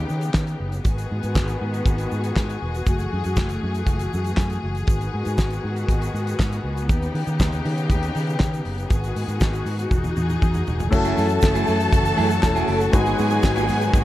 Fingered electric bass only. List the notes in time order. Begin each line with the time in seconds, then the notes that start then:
0.10 D#3
0.35 D#3
0.60 F#1
0.85 G#1
1.11 G#2
1.24 G#2
1.36 G#1
1.61 G#2
1.86 G#1
2.12 G#2
2.36 G#2
2.62 E1
2.87 F#1
3.13 F#2
3.25 F#2
3.37 F#1
3.63 F#2
3.87 F#1
4.14 F#2
4.38 F#2
4.63 F#1
4.88 G#1
5.14 G#2
5.26 G#2
5.38 G#1
5.64 G#2
5.88 G#1
6.14 G#2
6.40 G#2
6.64 C#2
6.90 D#2
7.14 D#3
7.27 D#3
7.40 D#2
7.65 D#3
7.90 D#2
8.15 D#3
8.41 D#3
8.65 F#1
8.91 G#1
9.16 G#2
9.28 G#2
9.41 G#1
9.66 G#2
9.91 E1
10.17 E2
10.43 E2
10.68 E1
10.93 F#1
11.18 F#2
11.43 F#1
11.68 F#2
11.93 F#1
12.19 F#2
12.44 E1
12.68 F#1
12.94 G#1
13.19 G#2
13.44 G#1
13.69 G#2
13.94 G#1